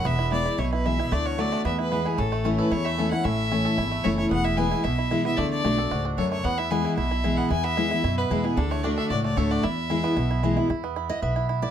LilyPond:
<<
  \new Staff \with { instrumentName = "Fiddle" } { \time 4/4 \key e \mixolydian \tempo 4 = 225 e''4 d''4 cis''8 b'8 e''4 | d''8 cis''8 d''4 e''8 b'4 gis'8 | a'4 r8 b'8 cis''8 e''4 fis''8 | e''2. cis''8 cis''8 |
fis''8 e''8 gis''4 e''4. e''8 | d''8 d''2 r8 cis''8 cis''8 | fis''8 e''8 gis''4 e''4. fis''8 | gis''8 e''2 b'4 gis'8 |
a'8 cis''8 d''8 e''8 d''8 d''8 cis''8 d''8 | e''2. r4 | r1 | }
  \new Staff \with { instrumentName = "Five-string banjo" } { \time 4/4 \key e \mixolydian b8 e'8 e'8 e'8 e'8 e'8 e'8 e'8 | a8 fis'8 fis8 a8 b8 e'8 b8 e'8 | cis'8 a8 cis'8 a'8 e'8 a8 a'8 e'8 | cis'4 cis'8 a'8 e'8 a8 a'8 e'8 |
b8 e'8 b8 e'8 e'8 e'8 e'8 b8 | a4 a8 a'8 fis'8 d'8 a'8 a8 | b8 e'8 b8 e'8 e'8 e'8 e'8 b8 | e'8 b8 e'8 e'8 e'8 b8 e'8 e'8 |
d'8 a8 d'8 a'8 fis'8 a8 a'8 fis'8 | e'4 e'8 b8 e'8 e'8 e'8 e'8 | e'8 b8 e'8 e'8 b8 e'8 e'8 e'8 | }
  \new Staff \with { instrumentName = "Steel-string acoustic guitar" } { \time 4/4 \key e \mixolydian << { r4 <e gis b e'>4 r4 <e gis b e'>8 <b e'>8 | r4 <d a d' fis'>4 r4 <e gis b e'>4 | r4 <e a cis' e'>4 r4 <e a cis' e'>8 <cis' e'>8 | r4 <e a cis' e'>4 r4 <e a cis' e'>4 |
r4 <e gis b e'>4 r4 <e gis b e'>8 <b e'>8 | r4 <d a d' fis'>8 <d' fis'>8 r2 | r4 <e gis b e'>4 r4 <e gis b e'>4 | r4 <e gis b e'>8 <b e'>8 r4 <e gis b e'>8 <b e'>8 |
r4 <d a d' fis'>4 r4 <d a d' fis'>4 | r4 <e gis b e'>4 r4 <e gis b e'>8 <b e'>8 | r4. dis''8 e''4. d''8 | } \\ { e,2 b,2 | d2 e,2 | a,2 e,2 | a,2 e,2 |
e,2 b,2 | d2 gis,4 fis,4 | e,2 b,2 | e,2 b,2 |
d2 a,2 | e,2 b,2 | r1 | } >> }
  \new Staff \with { instrumentName = "Upright bass" } { \clef bass \time 4/4 \key e \mixolydian e,,2 b,,2 | d,2 e,2 | a,,2 e,2 | a,,2 gis,,4 fis,,4 |
e,,2 b,,2 | d,4 b,,4 cis,4 d,4 | e,2 b,,2 | e,2 fis,4 e,4 |
d,2 cis,4 d,4 | e,2 b,,2 | e,2 b,,2 | }
>>